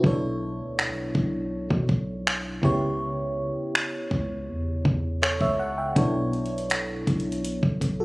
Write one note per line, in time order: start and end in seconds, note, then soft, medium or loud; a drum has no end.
0.00 0.61 B1 loud
0.00 2.59 B2 medium
0.00 0.21 C4 soft
0.00 kick loud
0.04 2.59 B3 medium
0.04 2.59 D4 medium
0.04 2.60 E4 medium
0.04 2.60 A4 medium
0.04 2.60 C#5 medium
0.59 0.88 D2 medium
0.79 finger snap loud
0.87 1.13 B1 medium
1.15 1.68 B1 medium
1.15 kick medium
1.70 1.88 B2 loud
1.70 kick medium
1.89 2.60 B1 loud
1.89 kick medium
2.27 finger snap loud
2.62 3.52 C#2 loud
2.62 5.55 C#3 medium
2.62 5.55 B3 medium
2.62 5.55 E4 medium
2.62 5.56 G4 medium
2.62 5.19 C#5 medium
2.62 kick loud
3.75 finger snap loud
4.11 4.50 C#2 loud
4.11 kick medium
4.48 4.83 E2 loud
4.85 5.39 E2 loud
4.85 kick medium
5.22 5.40 A4 medium
5.22 5.40 C#5 medium
5.22 finger snap loud
5.41 5.94 C#2 medium
5.41 5.59 C#5 medium
5.41 5.59 E5 medium
5.41 kick medium
5.59 5.77 F#5 medium
5.78 6.13 E5 soft
5.78 6.13 G5 medium
5.95 7.03 B1 loud
5.95 8.05 B2 medium
5.95 8.05 B3 medium
5.95 8.05 D4 medium
5.95 8.05 E4 medium
5.95 7.78 A4 medium
5.95 7.79 C#5 medium
5.95 kick loud
5.95 closed hi-hat medium
6.33 closed hi-hat soft
6.46 closed hi-hat medium
6.58 closed hi-hat medium
6.70 finger snap loud
6.70 closed hi-hat medium
7.07 7.61 B1 loud
7.07 kick medium
7.07 closed hi-hat medium
7.20 closed hi-hat soft
7.32 closed hi-hat medium
7.45 closed hi-hat medium
7.63 7.81 B1 loud
7.63 kick medium
7.81 8.05 B1 loud
7.81 kick medium
7.81 closed hi-hat medium
8.00 8.05 F#4 medium
8.00 8.05 A4 medium